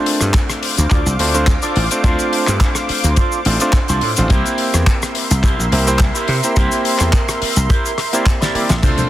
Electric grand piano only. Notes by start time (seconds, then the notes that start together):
Already playing: A3 C4 D4 F4 C5
1.19 A3 C4 D4 F4 C5
1.34 A3 C4 D4 F4 C5
1.91 A3 C4 D4 F4 C5
2.04 A3 C4 D4 F4 C5
3.46 A3 C4 D4 F4 C5
3.61 A3 C4 D4 F4 C5
4.17 A3 C4 D4 F4 C5
4.30 A#3 C4 E4 G4 C5
5.72 A#3 C4 E4 G4 C5
5.87 A#3 C4 E4 G4 C5
6.44 A#3 C4 E4 G4 C5
6.56 A#3 C4 E4 G4 C5
8.13 A#3 C4 E4 G4 C5
8.54 A#3 C4 E4 G4 D5
8.82 A3 C4 D4 F4 C5